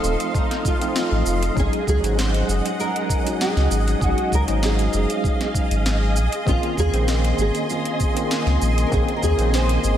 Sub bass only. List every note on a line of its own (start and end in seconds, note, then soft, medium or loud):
0.03 0.16 D#1 medium
1.11 1.23 A1 loud
1.26 1.50 F1 medium
1.56 1.69 G#1 loud
1.87 2.00 C#2 loud
2.03 2.43 G#1 medium
2.48 2.61 F#1 medium
3.56 3.68 C#2 loud
3.71 3.95 G#1 medium
4.01 4.14 G#1 medium
4.32 4.44 C#2 medium
4.48 4.88 G#1 medium
4.94 5.06 F#1 medium
5.71 6.17 G#1 medium
6.16 6.28 A#1 medium
6.47 6.59 A#1 loud
6.77 6.90 D#2 medium
6.93 7.33 A#1 loud
7.38 7.51 G#1 medium
8.46 8.58 C#2 loud
8.61 8.85 A#1 medium
8.92 9.04 A#1 medium
9.23 9.35 D#2 loud
9.38 9.78 A#1 loud
9.84 9.96 G#1 loud